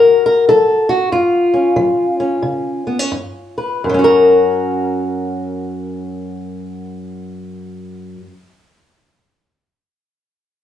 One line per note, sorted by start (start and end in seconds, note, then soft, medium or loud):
0.00 0.45 C#3 medium
0.00 0.88 F#4 soft
0.00 0.25 A#4 loud
0.26 0.48 A#4 medium
0.49 1.07 F#3 medium
0.49 0.89 A4 medium
0.89 1.12 F#4 medium
1.12 1.72 F#2 medium
1.12 3.84 F4 medium
1.54 2.19 C#4 soft
1.76 2.38 F#3 medium
2.20 2.86 C#4 soft
2.43 3.07 C#3 medium
2.87 2.99 B3 soft
2.99 3.12 C#4 soft
3.12 3.78 G2 medium
3.58 3.81 B4 soft
3.84 8.16 F#2 medium
3.89 8.21 F#3 medium
3.94 8.25 C#4 medium
3.99 8.30 F#4 medium
4.04 8.31 A#4 medium